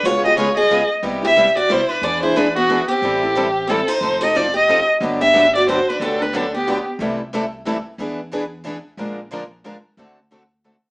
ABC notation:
X:1
M:3/4
L:1/8
Q:"Swing" 1/4=181
K:Clyd
V:1 name="Violin"
^c ^d c d2 z | z e2 d c B | d c B F2 G- | G4 A c- |
c _e d e2 z | z e2 d c B | A B A G2 z | z6 |
z6 | z6 | z6 |]
V:2 name="Steel-string acoustic guitar"
^E G E ^G2 z | z G2 F E D | ^G E D B,2 C- | C4 C _E- |
_E G =F G2 z | z G2 F F D | D D D B,2 z | z6 |
z6 | z6 | z6 |]
V:3 name="Steel-string acoustic guitar"
[^C,^G,B,^E^G] [B,EG] [C,G,B,EG] z [C,G,B,EG] z | [C,G,B,EG] [B,EG] [C,G,B,EG] z [C,G,B,EG] z | [E,B,D^G] [B,DG] [E,B,DG] z [E,B,DG] z | [E,G,CEA] [CEA] [E,G,CEA] z [E,G,CEA] z |
[=F,C_EA] [CEA] [F,CEA] z [F,CEA] z | [D,F,B,DG] [B,DG] [D,F,B,DG] z [D,F,B,DG] z | [D,F,B,DG] [B,DG] [D,F,B,DG] z [D,F,B,DG] z | [C,E,A,EA] z [C,E,A,EA] z [C,E,A,EA] z |
[E,B,D^G] z [E,B,DG] z [E,B,DG] z | [=F,_A,D=F_B] z [F,A,DFB] z [F,A,DFB] z | [D,A,CFA] z [D,A,CFA] z [D,A,CFA] z |]
V:4 name="Steel-string acoustic guitar"
[^C,^G,B,^E^G] z [C,G,B,EG] z [C,G,B,EG] z | [C,G,B,EG] z [C,G,B,EG] z [C,G,B,EG] z | [E,B,D^GB] z [E,B,DGB] z [E,B,DGB] z | [E,G,CEA] z [E,G,CEA] z [E,G,CEA] z |
[=F,C_EA] z [F,CEA] z [F,CEA] z | [D,F,B,DG] z [D,F,B,DG] z [D,F,B,DG] z | [D,F,B,DG] z [D,F,B,DG] z [D,F,B,DG] z | [C,E,G,CEA] z [C,E,G,CEA] z [C,E,G,CEA] z |
[E,B,D^GB] z [E,B,DGB] z [E,B,DGB] z | [D,=F,_B,D_A] z [D,F,B,DA] z [D,F,B,DA] z | [D,A,CFA] z [D,A,CFA] z [D,A,CFA] z |]
V:5 name="Upright bass" clef=bass
^C,,6 | C,,6 | E,,6 | A,,,6 |
=F,,,6 | G,,,6 | D,,6 | C,,6 |
E,,6 | _B,,,6 | D,,6 |]